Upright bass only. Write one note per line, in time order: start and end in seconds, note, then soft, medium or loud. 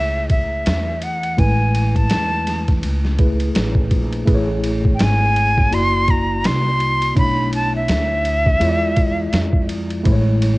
0.00 0.62 C#2 medium
0.66 1.35 E2 medium
1.39 2.07 A1 loud
2.11 2.79 E2 medium
2.83 3.52 C#2 medium
3.55 3.90 A1 medium
3.91 4.26 A#1 medium
4.27 4.96 A1 loud
5.00 5.69 G#1 loud
5.72 6.41 F#1 medium
6.45 7.13 C2 medium
7.17 7.85 B1 loud
7.89 8.57 D2 loud
8.60 9.29 E2 loud
9.33 10.02 F2 medium
10.06 10.58 A1 loud